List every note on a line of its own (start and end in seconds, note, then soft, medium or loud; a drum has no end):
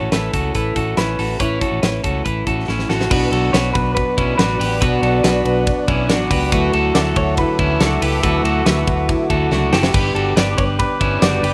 0.00 0.10 A1 medium
0.00 0.11 A3 soft
0.00 0.12 C#4 soft
0.00 0.12 E4 soft
0.00 0.12 F#4 medium
0.00 0.12 A4 medium
0.00 0.14 C#5 loud
0.11 0.30 A1 medium
0.11 0.76 E3 medium
0.11 0.76 A3 medium
0.11 0.76 C#4 medium
0.11 0.34 E4 soft
0.11 0.74 E4 medium
0.11 0.54 A4 medium
0.11 0.33 B4 medium
0.11 snare loud
0.11 closed hi-hat medium
0.33 0.51 C#2 medium
0.33 0.55 F#4 medium
0.33 0.55 A4 medium
0.33 kick medium
0.33 closed hi-hat medium
0.55 0.73 A1 loud
0.55 0.77 E4 medium
0.55 0.99 A4 medium
0.55 0.76 B4 medium
0.55 kick medium
0.55 closed hi-hat medium
0.75 0.93 A1 medium
0.75 0.97 A3 soft
0.75 0.98 C#4 soft
0.75 0.97 E4 medium
0.75 0.98 F#4 medium
0.75 0.97 A4 medium
0.75 kick medium
0.75 closed hi-hat medium
0.97 1.15 A1 loud
0.97 1.19 E3 medium
0.97 1.19 A3 medium
0.97 1.19 C#4 medium
0.97 1.18 E4 medium
0.97 1.17 E4 medium
0.97 1.40 B4 medium
0.97 snare medium
0.97 closed hi-hat medium
1.18 1.36 A1 medium
1.18 1.39 A3 soft
1.18 1.40 C#4 soft
1.18 1.40 E4 soft
1.18 1.40 F#4 medium
1.18 1.39 A4 medium
1.18 open hi-hat medium
1.40 1.57 A1 loud
1.40 1.61 A2 medium
1.40 1.62 E3 medium
1.40 1.62 A3 medium
1.40 1.61 C#4 medium
1.40 1.62 E4 medium
1.40 1.59 E4 medium
1.40 1.61 B4 loud
1.40 2.22 C#5 medium
1.40 kick medium
1.40 closed hi-hat medium
1.61 1.82 A3 soft
1.61 1.83 C#4 soft
1.61 1.83 E4 medium
1.61 1.83 F#4 medium
1.61 1.82 A4 medium
1.61 kick medium
1.61 closed hi-hat medium
1.72 1.81 A1 medium
1.82 2.00 A1 medium
1.82 2.47 E3 soft
1.82 2.47 A3 medium
1.82 2.46 C#4 medium
1.82 2.04 E4 medium
1.82 2.45 E4 medium
1.82 2.03 B4 medium
1.82 snare loud
1.82 closed hi-hat medium
2.04 2.22 C#2 medium
2.04 2.25 F#4 medium
2.04 2.24 A4 medium
2.04 kick medium
2.04 closed hi-hat medium
2.25 2.43 A1 medium
2.25 2.47 E4 soft
2.25 2.47 B4 medium
2.25 kick medium
2.25 closed hi-hat medium
2.46 2.64 A1 medium
2.46 2.67 A3 soft
2.46 2.68 C#4 medium
2.46 2.68 E4 medium
2.46 2.69 F#4 medium
2.46 2.68 A4 medium
2.46 kick medium
2.46 closed hi-hat medium
2.67 2.86 A1 medium
2.67 2.89 E3 medium
2.67 2.90 A3 medium
2.67 2.90 C#4 soft
2.67 2.89 C#4 medium
2.67 2.90 E4 medium
2.67 2.87 E4 medium
2.67 snare medium
2.79 snare medium
2.88 3.07 A1 medium
2.88 3.10 A3 soft
2.88 3.11 C#4 soft
2.88 3.10 E4 soft
2.88 3.50 F#4 medium
2.88 3.10 F#4 medium
2.88 3.10 A4 medium
2.88 snare medium
3.00 snare medium
3.10 3.29 B1 loud
3.10 3.51 B2 medium
3.10 3.53 F#3 medium
3.10 3.53 B3 medium
3.10 3.54 D4 medium
3.10 3.32 F#4 medium
3.10 3.32 B4 loud
3.10 6.49 B4 medium
3.10 6.49 D5 medium
3.10 9.90 F#5 medium
3.10 11.54 D6 loud
3.10 kick loud
3.10 crash medium
3.32 3.50 B1 loud
3.32 3.53 F#4 medium
3.32 3.53 A4 medium
3.32 ride medium
3.52 3.71 B1 medium
3.52 3.74 B2 medium
3.52 3.75 F#3 medium
3.52 3.74 B3 medium
3.52 3.72 D4 medium
3.52 4.14 F#4 medium
3.52 4.14 B4 medium
3.52 3.73 C#5 medium
3.52 snare loud
3.52 ride medium
3.73 4.01 B1 loud
3.73 3.95 F#3 soft
3.73 3.96 B3 medium
3.73 3.96 D4 medium
3.73 3.94 B4 loud
3.73 kick medium
3.73 ride medium
3.95 4.37 B2 medium
3.95 4.38 F#3 medium
3.95 4.38 B3 medium
3.95 4.40 D4 medium
3.95 4.36 B4 medium
3.95 kick medium
3.95 ride medium
4.18 4.35 B1 medium
4.18 4.39 C#4 medium
4.18 4.39 E4 medium
4.18 kick medium
4.18 ride medium
4.38 4.56 A1 medium
4.38 4.60 B2 medium
4.38 4.60 F#3 medium
4.38 4.60 B3 medium
4.38 4.60 D4 medium
4.38 4.58 D4 medium
4.38 4.60 F#4 medium
4.38 4.82 B4 loud
4.38 snare loud
4.38 ride medium
4.59 4.82 A1 medium
4.59 4.80 F#3 soft
4.59 4.81 B3 soft
4.59 4.81 D4 soft
4.59 4.81 G4 medium
4.59 4.80 B4 medium
4.59 open hi-hat medium
4.59 ride medium
4.81 4.99 B1 loud
4.81 5.22 B2 medium
4.81 5.24 F#3 medium
4.81 5.24 B3 medium
4.81 5.26 D4 medium
4.81 5.63 F#4 medium
4.81 5.02 F#4 medium
4.81 5.02 B4 loud
4.81 kick loud
4.81 hi-hat pedal medium
4.81 ride medium
5.02 5.20 B1 loud
5.02 5.24 F#4 medium
5.02 5.23 A4 medium
5.02 ride medium
5.24 5.42 B1 loud
5.24 5.45 B2 medium
5.24 5.46 F#3 medium
5.24 5.45 B3 medium
5.24 5.43 D4 medium
5.24 5.85 F#4 medium
5.24 5.84 B4 medium
5.24 snare loud
5.24 ride medium
5.45 5.72 B1 loud
5.45 5.66 F#3 medium
5.45 5.67 B3 medium
5.45 5.66 D4 medium
5.45 ride medium
5.66 6.08 B2 medium
5.66 6.10 F#3 medium
5.66 6.10 B3 medium
5.66 6.11 D4 medium
5.66 kick medium
5.66 ride medium
5.88 6.09 B1 medium
5.88 6.10 C#4 medium
5.88 6.09 E4 medium
5.88 kick loud
5.88 ride medium
6.09 6.27 A1 medium
6.09 6.31 B2 medium
6.09 6.31 F#3 loud
6.09 6.31 B3 loud
6.09 6.31 D4 medium
6.09 6.29 D4 loud
6.09 6.31 F#4 medium
6.09 snare loud
6.09 ride medium
6.30 6.48 C#2 medium
6.30 6.52 F#3 soft
6.30 6.53 B3 soft
6.30 6.52 D4 medium
6.30 6.97 F#4 medium
6.30 6.52 G4 medium
6.30 6.51 B4 medium
6.30 kick loud
6.30 open hi-hat medium
6.30 ride medium
6.52 6.70 D2 loud
6.52 6.94 D3 medium
6.52 6.94 F#3 medium
6.52 6.95 A3 medium
6.52 6.96 E4 medium
6.52 6.73 F#4 medium
6.52 9.90 A4 medium
6.52 6.73 B4 loud
6.52 9.90 E5 medium
6.52 kick loud
6.52 hi-hat pedal medium
6.52 ride medium
6.73 6.91 D2 loud
6.73 6.95 F#4 medium
6.73 6.94 A4 medium
6.73 ride medium
6.94 7.12 D2 medium
6.94 7.16 D3 medium
6.94 7.17 F#3 medium
6.94 7.16 A3 medium
6.94 7.15 E4 medium
6.94 7.56 F#4 medium
6.94 7.55 A4 medium
6.94 7.00 D5 medium
6.94 snare loud
6.94 ride medium
7.16 7.43 D2 loud
7.16 7.37 F#3 medium
7.16 7.38 A3 medium
7.16 7.37 E4 medium
7.16 7.36 C#5 medium
7.16 kick medium
7.16 ride medium
7.37 7.79 D3 medium
7.37 7.79 F#3 medium
7.37 7.80 A3 medium
7.37 7.81 E4 medium
7.37 7.82 B4 medium
7.37 kick medium
7.37 ride medium
7.59 7.76 D2 loud
7.59 7.81 C#4 medium
7.59 7.80 E4 medium
7.59 kick medium
7.59 ride soft
7.80 7.98 C#2 medium
7.80 8.01 D3 medium
7.80 8.02 F#3 medium
7.80 8.01 A3 medium
7.80 8.02 D4 medium
7.80 8.00 E4 medium
7.80 8.02 F#4 medium
7.80 8.22 A4 medium
7.80 snare loud
7.80 ride medium
8.01 8.19 C#2 medium
8.01 8.22 F#3 soft
8.01 8.23 A3 soft
8.01 8.23 E4 medium
8.01 8.24 G4 medium
8.01 8.22 B4 medium
8.01 open hi-hat medium
8.01 ride medium
8.22 8.41 D2 loud
8.22 8.65 D3 medium
8.22 8.65 F#3 medium
8.22 8.66 A3 loud
8.22 8.66 E4 medium
8.22 8.44 F#4 medium
8.22 8.43 A4 loud
8.22 8.44 B4 loud
8.22 kick loud
8.22 hi-hat pedal medium
8.22 ride medium
8.44 8.62 D2 loud
8.44 9.72 F#4 medium
8.44 8.66 F#4 medium
8.44 8.65 A4 medium
8.44 ride medium
8.65 8.83 D2 loud
8.65 8.87 D3 medium
8.65 8.87 F#3 medium
8.65 8.87 A3 medium
8.65 8.85 E4 medium
8.65 9.27 F#4 medium
8.65 9.26 B4 medium
8.65 snare loud
8.65 ride medium
8.86 9.14 D2 loud
8.86 9.08 F#3 soft
8.86 9.09 A3 medium
8.86 9.08 E4 medium
8.86 kick loud
8.86 ride medium
9.08 9.50 D3 medium
9.08 9.50 F#3 medium
9.08 9.51 A3 medium
9.08 9.52 E4 medium
9.08 kick medium
9.08 ride medium
9.30 9.47 D2 medium
9.30 9.50 F#4 medium
9.30 9.51 A4 medium
9.30 kick medium
9.30 ride medium
9.51 9.68 C#2 medium
9.51 9.72 D3 medium
9.51 9.73 F#3 medium
9.51 9.72 A3 medium
9.51 9.73 D4 medium
9.51 9.70 E4 medium
9.51 9.72 F#4 medium
9.51 snare medium
9.72 9.90 F#1 medium
9.72 9.95 F#3 soft
9.72 9.94 A3 soft
9.72 9.93 E4 soft
9.72 9.94 F#4 medium
9.72 10.39 G4 medium
9.72 9.93 A4 medium
9.72 snare loud
9.83 snare loud
9.94 10.12 G1 loud
9.94 10.35 G2 medium
9.94 10.36 D3 medium
9.94 10.36 G3 medium
9.94 10.37 B3 medium
9.94 10.37 D4 medium
9.94 10.16 G4 medium
9.94 10.15 B4 loud
9.94 11.54 B4 medium
9.94 11.54 D5 medium
9.94 11.54 G5 medium
9.94 kick loud
9.94 crash medium
10.15 10.33 G1 medium
10.15 10.37 F#4 medium
10.15 10.36 A4 medium
10.15 ride medium
10.36 10.54 G1 medium
10.36 10.58 G2 medium
10.36 10.58 D3 medium
10.36 10.58 G3 medium
10.36 10.57 B3 medium
10.36 10.56 D4 medium
10.36 10.97 G4 medium
10.36 10.97 B4 medium
10.36 10.57 D5 medium
10.36 snare loud
10.36 ride medium
10.57 10.84 G1 loud
10.57 10.79 G3 medium
10.57 10.79 B3 medium
10.57 10.79 D4 medium
10.57 10.63 C#5 loud
10.57 kick medium
10.57 ride medium
10.78 11.21 D3 medium
10.78 11.22 G3 medium
10.78 11.22 B3 medium
10.78 11.23 D4 medium
10.78 11.22 B4 loud
10.78 kick medium
10.78 ride medium
11.01 11.18 G1 medium
11.01 11.22 C#4 medium
11.01 11.22 E4 medium
11.01 kick medium
11.01 ride medium
11.22 11.40 F#1 medium
11.22 11.43 G2 medium
11.22 11.44 D3 medium
11.22 11.44 G3 medium
11.22 11.43 B3 medium
11.22 11.44 D4 medium
11.22 11.41 D4 medium
11.22 11.44 F#4 medium
11.22 11.54 D5 medium
11.22 snare loud
11.22 ride medium
11.43 11.54 F#1 medium
11.43 11.54 G3 soft
11.43 11.54 B3 soft
11.43 11.54 D4 medium
11.43 11.54 G4 medium
11.43 11.54 B4 medium
11.43 open hi-hat medium
11.43 ride medium